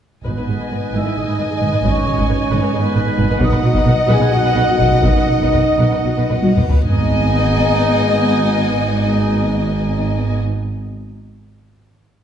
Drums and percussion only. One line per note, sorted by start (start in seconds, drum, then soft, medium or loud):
0.25 taiko soft
1.84 taiko medium
2.18 taiko medium
3.18 taiko medium
3.40 taiko medium
3.75 taiko medium
4.79 taiko medium
5.03 taiko medium
5.41 taiko medium
5.54 taiko low-mid medium
6.30 taiko low-mid medium
6.43 taiko high medium
6.57 taiko low-mid medium
6.69 taiko low medium